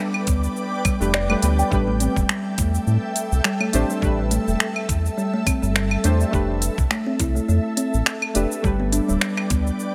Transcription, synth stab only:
0, 0, Header, 1, 2, 480
1, 0, Start_track
1, 0, Key_signature, 0, "minor"
1, 0, Tempo, 576923
1, 1428, Time_signature, 4, 2, 24, 8
1, 8276, End_track
2, 0, Start_track
2, 0, Title_t, "Synth stab"
2, 0, Program_c, 0, 62
2, 0, Control_c, 0, 64, 127
2, 0, Note_on_c, 0, 57, 97
2, 0, Note_on_c, 0, 62, 83
2, 0, Note_on_c, 0, 67, 90
2, 0, Note_on_c, 0, 71, 110
2, 806, Note_off_c, 0, 57, 0
2, 811, Note_off_c, 0, 62, 0
2, 817, Note_off_c, 0, 67, 0
2, 821, Note_off_c, 0, 71, 0
2, 830, Note_on_c, 0, 57, 92
2, 835, Note_on_c, 0, 62, 92
2, 841, Note_on_c, 0, 67, 87
2, 847, Note_on_c, 0, 71, 101
2, 1043, Note_off_c, 0, 57, 0
2, 1046, Note_off_c, 0, 62, 0
2, 1049, Note_off_c, 0, 67, 0
2, 1052, Note_off_c, 0, 71, 0
2, 1072, Note_on_c, 0, 57, 101
2, 1077, Note_on_c, 0, 62, 88
2, 1084, Note_on_c, 0, 67, 85
2, 1089, Note_on_c, 0, 71, 104
2, 1157, Note_off_c, 0, 57, 0
2, 1160, Note_off_c, 0, 62, 0
2, 1164, Note_off_c, 0, 67, 0
2, 1166, Note_off_c, 0, 71, 0
2, 1180, Note_on_c, 0, 57, 87
2, 1185, Note_on_c, 0, 62, 75
2, 1190, Note_on_c, 0, 67, 75
2, 1198, Note_on_c, 0, 71, 94
2, 1398, Note_off_c, 0, 57, 0
2, 1401, Note_off_c, 0, 62, 0
2, 1403, Note_off_c, 0, 67, 0
2, 1407, Note_off_c, 0, 71, 0
2, 1414, Note_on_c, 0, 57, 100
2, 1423, Note_on_c, 0, 62, 84
2, 1436, Note_on_c, 0, 67, 84
2, 1438, Control_c, 0, 64, 0
2, 1445, Note_on_c, 0, 71, 112
2, 1565, Control_c, 0, 64, 127
2, 3075, Note_off_c, 0, 57, 0
2, 3080, Note_off_c, 0, 62, 0
2, 3086, Note_off_c, 0, 67, 0
2, 3091, Note_off_c, 0, 71, 0
2, 3100, Note_on_c, 0, 57, 90
2, 3105, Note_on_c, 0, 62, 87
2, 3112, Note_on_c, 0, 67, 91
2, 3117, Note_on_c, 0, 72, 101
2, 3318, Note_off_c, 0, 57, 0
2, 3320, Note_off_c, 0, 62, 0
2, 3324, Note_off_c, 0, 67, 0
2, 3327, Note_off_c, 0, 72, 0
2, 3336, Note_on_c, 0, 57, 98
2, 3346, Note_on_c, 0, 62, 91
2, 3356, Note_on_c, 0, 67, 95
2, 3367, Note_on_c, 0, 71, 109
2, 4996, Note_off_c, 0, 57, 0
2, 5001, Note_off_c, 0, 62, 0
2, 5006, Note_off_c, 0, 67, 0
2, 5012, Note_off_c, 0, 71, 0
2, 5019, Note_on_c, 0, 57, 92
2, 5025, Note_on_c, 0, 62, 84
2, 5030, Note_on_c, 0, 67, 84
2, 5033, Note_on_c, 0, 72, 101
2, 5238, Note_off_c, 0, 57, 0
2, 5240, Note_off_c, 0, 62, 0
2, 5243, Note_off_c, 0, 67, 0
2, 5245, Note_off_c, 0, 72, 0
2, 5247, Note_on_c, 0, 57, 100
2, 5260, Note_on_c, 0, 62, 90
2, 5270, Note_on_c, 0, 67, 89
2, 5280, Control_c, 0, 64, 0
2, 5281, Note_on_c, 0, 71, 104
2, 5444, Control_c, 0, 64, 127
2, 6911, Note_off_c, 0, 57, 0
2, 6918, Note_off_c, 0, 62, 0
2, 6923, Note_off_c, 0, 67, 0
2, 6928, Note_off_c, 0, 71, 0
2, 6936, Note_on_c, 0, 57, 91
2, 6945, Note_on_c, 0, 62, 85
2, 6950, Note_on_c, 0, 67, 82
2, 6956, Note_on_c, 0, 71, 96
2, 7156, Note_off_c, 0, 57, 0
2, 7161, Note_off_c, 0, 62, 0
2, 7163, Note_off_c, 0, 67, 0
2, 7166, Note_off_c, 0, 71, 0
2, 7174, Note_on_c, 0, 57, 95
2, 7185, Note_on_c, 0, 62, 86
2, 7197, Note_on_c, 0, 67, 94
2, 7200, Control_c, 0, 64, 0
2, 7206, Note_on_c, 0, 71, 111
2, 7357, Control_c, 0, 64, 127
2, 8276, Note_off_c, 0, 57, 0
2, 8276, Note_off_c, 0, 62, 0
2, 8276, Note_off_c, 0, 67, 0
2, 8276, Note_off_c, 0, 71, 0
2, 8276, End_track
0, 0, End_of_file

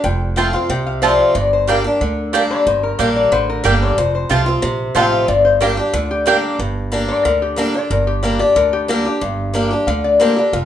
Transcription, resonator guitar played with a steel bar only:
0, 0, Header, 1, 2, 480
1, 0, Start_track
1, 0, Key_signature, -2, "minor"
1, 0, Tempo, 327869
1, 60, Time_signature, 4, 2, 24, 8
1, 15592, End_track
2, 0, Start_track
2, 0, Title_t, "Resonator guitar played with a steel bar"
2, 0, Program_c, 0, 25
2, 58, Note_on_c, 0, 79, 100
2, 299, Note_off_c, 0, 79, 0
2, 544, Note_on_c, 0, 79, 93
2, 782, Note_off_c, 0, 79, 0
2, 791, Note_on_c, 0, 77, 100
2, 1017, Note_off_c, 0, 77, 0
2, 1027, Note_on_c, 0, 79, 93
2, 1260, Note_off_c, 0, 79, 0
2, 1266, Note_on_c, 0, 77, 93
2, 1494, Note_off_c, 0, 77, 0
2, 1502, Note_on_c, 0, 74, 89
2, 1741, Note_off_c, 0, 74, 0
2, 1755, Note_on_c, 0, 77, 76
2, 1979, Note_off_c, 0, 77, 0
2, 1987, Note_on_c, 0, 74, 92
2, 2224, Note_off_c, 0, 74, 0
2, 2241, Note_on_c, 0, 72, 84
2, 2462, Note_off_c, 0, 72, 0
2, 2471, Note_on_c, 0, 70, 102
2, 3398, Note_off_c, 0, 70, 0
2, 3670, Note_on_c, 0, 74, 105
2, 3896, Note_off_c, 0, 74, 0
2, 3903, Note_on_c, 0, 72, 91
2, 4142, Note_off_c, 0, 72, 0
2, 4149, Note_on_c, 0, 70, 89
2, 4375, Note_off_c, 0, 70, 0
2, 4376, Note_on_c, 0, 67, 91
2, 4618, Note_off_c, 0, 67, 0
2, 4632, Note_on_c, 0, 74, 96
2, 4856, Note_off_c, 0, 74, 0
2, 4862, Note_on_c, 0, 72, 105
2, 5101, Note_off_c, 0, 72, 0
2, 5117, Note_on_c, 0, 70, 106
2, 5339, Note_off_c, 0, 70, 0
2, 5347, Note_on_c, 0, 67, 84
2, 5583, Note_off_c, 0, 67, 0
2, 5594, Note_on_c, 0, 74, 93
2, 5817, Note_off_c, 0, 74, 0
2, 5825, Note_on_c, 0, 72, 102
2, 6054, Note_off_c, 0, 72, 0
2, 6071, Note_on_c, 0, 72, 85
2, 6295, Note_off_c, 0, 72, 0
2, 6301, Note_on_c, 0, 67, 107
2, 6539, Note_off_c, 0, 67, 0
2, 6548, Note_on_c, 0, 65, 91
2, 7012, Note_off_c, 0, 65, 0
2, 7256, Note_on_c, 0, 79, 114
2, 7496, Note_off_c, 0, 79, 0
2, 7497, Note_on_c, 0, 77, 79
2, 7727, Note_off_c, 0, 77, 0
2, 7735, Note_on_c, 0, 74, 101
2, 7969, Note_off_c, 0, 74, 0
2, 7975, Note_on_c, 0, 72, 87
2, 8202, Note_off_c, 0, 72, 0
2, 8208, Note_on_c, 0, 70, 102
2, 8450, Note_on_c, 0, 67, 97
2, 8451, Note_off_c, 0, 70, 0
2, 8683, Note_off_c, 0, 67, 0
2, 8687, Note_on_c, 0, 65, 96
2, 8931, Note_off_c, 0, 65, 0
2, 8942, Note_on_c, 0, 67, 107
2, 9634, Note_off_c, 0, 67, 0
2, 10374, Note_on_c, 0, 74, 107
2, 10605, Note_off_c, 0, 74, 0
2, 10618, Note_on_c, 0, 70, 98
2, 10857, Note_off_c, 0, 70, 0
2, 10862, Note_on_c, 0, 67, 90
2, 11090, Note_off_c, 0, 67, 0
2, 11099, Note_on_c, 0, 70, 100
2, 11338, Note_off_c, 0, 70, 0
2, 11348, Note_on_c, 0, 74, 92
2, 11573, Note_off_c, 0, 74, 0
2, 11575, Note_on_c, 0, 70, 83
2, 11815, Note_off_c, 0, 70, 0
2, 11816, Note_on_c, 0, 67, 92
2, 12047, Note_off_c, 0, 67, 0
2, 12052, Note_on_c, 0, 70, 96
2, 12294, Note_off_c, 0, 70, 0
2, 12295, Note_on_c, 0, 74, 100
2, 12527, Note_off_c, 0, 74, 0
2, 12533, Note_on_c, 0, 70, 105
2, 12775, Note_off_c, 0, 70, 0
2, 12779, Note_on_c, 0, 67, 100
2, 13009, Note_off_c, 0, 67, 0
2, 13014, Note_on_c, 0, 70, 105
2, 13255, Note_off_c, 0, 70, 0
2, 13255, Note_on_c, 0, 67, 94
2, 14192, Note_off_c, 0, 67, 0
2, 14451, Note_on_c, 0, 77, 115
2, 14694, Note_off_c, 0, 77, 0
2, 14702, Note_on_c, 0, 74, 102
2, 14930, Note_off_c, 0, 74, 0
2, 14940, Note_on_c, 0, 72, 86
2, 15178, Note_off_c, 0, 72, 0
2, 15184, Note_on_c, 0, 70, 83
2, 15411, Note_off_c, 0, 70, 0
2, 15420, Note_on_c, 0, 77, 107
2, 15592, Note_off_c, 0, 77, 0
2, 15592, End_track
0, 0, End_of_file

